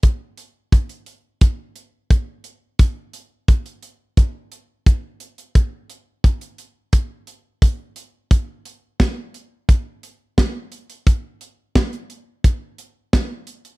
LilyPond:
\new DrumStaff \with { instrumentName = "Drums" } \drummode { \time 4/4 \tempo 4 = 87 <hh bd>8 hh8 <hh bd>16 hh16 hh8 <hh bd>8 hh8 <hh bd>8 hh8 | <hh bd>8 hh8 <hh bd>16 hh16 hh8 <hh bd>8 hh8 <hh bd>8 hh16 hh16 | <hh bd>8 hh8 <hh bd>16 hh16 hh8 <hh bd>8 hh8 <hh bd>8 hh8 | <hh bd>8 hh8 <hh bd sn>8 hh8 <hh bd>8 hh8 <hh bd sn>8 hh16 hh16 |
<hh bd>8 hh8 <hh bd sn>16 hh16 hh8 <hh bd>8 hh8 <hh bd sn>8 hh16 hh16 | }